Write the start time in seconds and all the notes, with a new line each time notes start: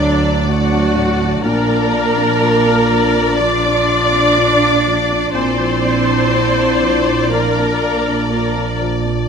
Already playing: D2 A2 D3 F#3 D4 F#4 D5
0.00 D5
0.24 D4
0.46 F#3 A3 F#4 F#5
0.72 D4
0.95 A2
1.21 D4
1.42 A#1 A#2 F3 A#3 D4 A#4 D5 A#5
1.46 D4
1.69 D4
1.93 D5
2.18 D4
2.42 F4
2.66 D4
2.90 F3
3.15 D4
3.38 F3 D4 F4 D5 D6
3.65 D4
3.89 D5
4.13 D4
4.38 F4
4.63 D4
4.87 F3
5.10 D4
5.32 A#1 A#2 F3 C4 D4 E4 C5 D5 C6
5.59 F3
5.85 D5
6.10 D4
6.34 F3
6.58 D4
6.82 F3
7.08 D4
7.32 F3 A#3 D4 A#4 A#5
7.58 D4
7.83 D5
8.08 D4
8.30 A#3 D4 F4 A#4 A#5
8.56 D4
8.81 F3
9.05 D4